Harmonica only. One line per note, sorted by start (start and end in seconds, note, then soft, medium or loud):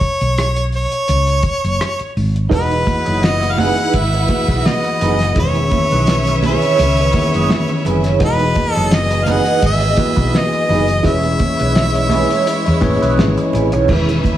0.00 0.70 C#5 medium
0.77 2.13 C#5 medium
2.54 3.26 B4 medium
3.25 3.54 D#5 medium
3.52 3.61 F5 medium
3.60 3.98 F#5 loud
3.96 4.69 E5 loud
4.68 5.38 D#5 medium
5.40 6.41 C#5 loud
6.46 7.83 C#5 medium
8.25 8.73 B4 loud
8.73 8.96 A4 loud
8.95 9.26 D#5 loud
9.25 9.32 F5 medium
9.31 9.65 F#5 loud
9.67 10.39 E5 loud
10.38 11.06 D#5 medium
11.07 13.15 E5 loud